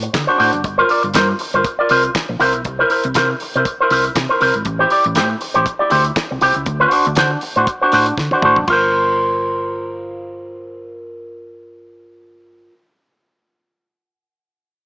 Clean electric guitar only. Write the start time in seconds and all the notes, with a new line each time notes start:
0.03 muted clean electric guitar stroke
0.13 muted clean electric guitar stroke
0.27 D4 F#4 C5
0.38 D4 F#4 C5
0.52 muted clean electric guitar stroke
0.64 muted clean electric guitar stroke
0.78 F4 A#4 C5
0.89 F4 A#4 D5
1.03 muted clean electric guitar stroke
1.14 F4 A#4 C5
1.29 muted clean electric guitar stroke
1.40 muted clean electric guitar stroke
1.54 F4 A#4 C5
1.65 muted clean electric guitar stroke
1.79 F4 A#4 D5
1.90 F4 A#4 C5
2.04 muted clean electric guitar stroke
2.15 muted clean electric guitar stroke
2.29 muted clean electric guitar stroke
2.40 E4 A#4 C5
2.54 muted clean electric guitar stroke
2.65 muted clean electric guitar stroke
2.79 E4 A#4 C5
2.90 E4 A#4 C5
3.05 muted clean electric guitar stroke
3.15 E4 A#4 C5
3.30 muted clean electric guitar stroke
3.41 muted clean electric guitar stroke
3.56 E4 A#4 C5
3.66 muted clean electric guitar stroke
3.81 E4 A#4 C5
3.91 E4 A#4 C5
4.05 muted clean electric guitar stroke
4.15 muted clean electric guitar stroke
4.29 E4 A#4 C5
4.41 E4 A#4 C5
4.55 muted clean electric guitar stroke
4.66 muted clean electric guitar stroke
4.79 E4 G4 C5
4.91 E4 G4 D5
5.05 muted clean electric guitar stroke
5.15 E4 G4 C5
5.30 muted clean electric guitar stroke
5.41 muted clean electric guitar stroke
5.54 E4 G4 C5
5.66 muted clean electric guitar stroke
5.79 E4 G4 D5
5.90 E4 G4 C5
6.05 muted clean electric guitar stroke
6.16 muted clean electric guitar stroke
6.31 muted clean electric guitar stroke
6.41 E4 G4 C5
6.56 muted clean electric guitar stroke
6.67 muted clean electric guitar stroke
6.80 D4 F#4 C5
6.92 D4 F#4 C5
7.06 muted clean electric guitar stroke
7.16 D4 F#4 C5
7.31 muted clean electric guitar stroke
7.43 muted clean electric guitar stroke
7.56 D4 F#4 C5
7.67 muted clean electric guitar stroke
7.82 D4 F#4 C5
7.93 D4 F#4 C5
8.07 muted clean electric guitar stroke
8.18 muted clean electric guitar stroke
8.32 D4 F#4 C5
8.44 D4 F#4 C5
8.58 muted clean electric guitar stroke
8.68 F4 A#4
8.72 C5